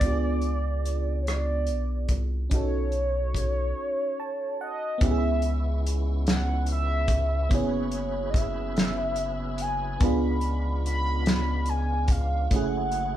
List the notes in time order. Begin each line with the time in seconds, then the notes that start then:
Already playing: D5
0.00 C#2 B3 D4 F4, kick, closed hi-hat
0.06 G4
0.13 G#4
0.42 closed hi-hat
0.85 closed hi-hat
1.22 C#5
1.27 cross-stick, closed hi-hat
1.32 D5
1.67 B1, closed hi-hat
2.08 C2, kick, closed hi-hat
2.50 B1 C#4 D#4, kick, closed hi-hat
2.54 F#4 A4 C#5
2.92 closed hi-hat
3.35 kick, closed hi-hat
4.20 A5
4.61 D#5 F#5
4.98 G#3 B3 C#4 E4, kick, closed hi-hat
5.02 C#2 C#3 B3 C#4 E4 G4 E5
5.11 G#4
5.42 closed hi-hat
5.87 closed hi-hat
6.27 F#5, snare, closed hi-hat
6.66 closed hi-hat
6.71 E5
7.08 kick, closed hi-hat
7.49 F#1 F#3 B3 C#4 E4 G#4 B4, kick, closed hi-hat
7.54 G#4 C#5
7.91 closed hi-hat
8.30 D#5, kick
8.36 E5, closed hi-hat
8.77 snare, closed hi-hat
9.16 closed hi-hat
9.58 G#5, closed hi-hat
10.00 C#2 C#3 G#3 B3 D4 F4 B5, kick, closed hi-hat
10.04 F4 G#4
10.41 closed hi-hat
10.86 B5, closed hi-hat
11.26 snare, closed hi-hat
11.66 G#5, closed hi-hat
12.08 F5, kick, closed hi-hat
12.50 F#1 F#3 A3 C#4 E4 G#4 F#5, kick, closed hi-hat
12.56 G#4
12.92 closed hi-hat